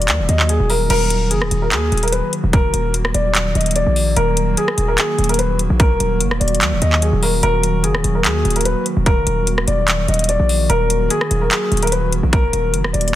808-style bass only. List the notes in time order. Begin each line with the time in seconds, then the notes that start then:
0.08 D#2
0.19 D#1
0.29 D#2
0.60 D#1
0.90 D#1
1.31 F#1
1.42 D#1
1.51 D#1
1.72 D#2
1.92 D#1
2.44 D#1
2.64 F#1
2.74 D#1
3.14 D#1
3.55 D#1
3.87 A#1
4.17 D#1
4.78 D#1
5.18 D#1
5.70 A#1
5.91 D1
6.00 D#1
6.21 F#1
6.31 D#1
6.41 D#1
6.61 D#2
6.72 D#1
6.82 D#2
7.13 D#1
7.43 D#1
7.84 F#1
7.95 D#1
8.04 D#1
8.25 D#2
8.45 D#1
8.97 D#1
9.17 F#1
9.27 D#1
9.68 D#1
10.08 D#1
10.40 A#1
10.70 D#1
11.31 D#1
11.72 D#1
12.23 A#1
12.44 D1
12.53 D#1
12.74 F#1
12.84 D#1
12.94 D#1